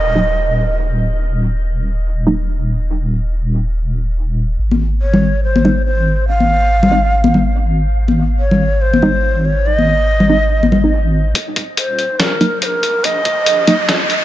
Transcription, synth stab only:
0.15 F#3 A#3 D#4
2.27 F#3 A#3 D#4
5.65 G#3 C4 D#4
6.91 G#3 C4 D#4
9.03 G#3 C4 D#4
10.29 G#3 C4 D#4
10.84 G#3 C4 D#4
12.41 F#3 A#3 D#4
13.67 F#3 A#3 D#4

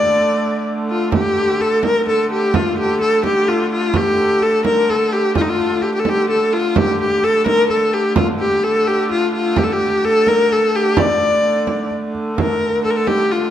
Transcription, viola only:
Already playing: D5
0.90 F4
1.14 G4
1.61 A4
1.85 A#4
2.09 A4
2.32 G4
2.55 F4
2.79 G4
3.01 A4
3.25 G4
3.48 F4
3.73 F4
3.96 G4
4.42 A4
4.65 A#4
4.90 A4
5.12 G4
5.36 F4
5.41 D#4
5.49 F4
5.82 G4
5.94 G4
6.00 A4
6.09 G4
6.30 A4
6.53 F4
6.77 G4
7.01 G4
7.24 A4
7.47 A#4
7.70 A4
7.93 G4
8.16 F4
8.39 G4
8.64 A4
8.87 G4
9.11 F4
9.34 F4
9.58 G4
9.63 A4
9.73 G4
10.05 A4
10.28 A#4
10.52 A4
10.75 G4
10.98 D5
12.37 A#4
12.84 A4
12.90 A#4
12.96 A4
13.07 G4
13.31 F4

